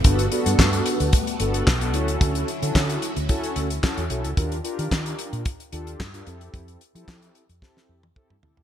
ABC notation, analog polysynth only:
X:1
M:4/4
L:1/16
Q:1/4=111
K:Glyd
V:1 name="Analog polysynth"
[B,DFA] z [B,DFA]6 z2 [B,DFA]2 z [B,DFA] [CEFA]2- | [CEFA]2 z [CEFA]4 z [CEFA]3 z [CEFA] z [CEFA] z | [D=FG_B] z [DFGB]6 z2 [DFGA]2 z [DFGB] [=CEGA]2- | [=CEGA]2 z [CEGA]4 z [CEGA]3 z [CEGA] z [CEGA] z |]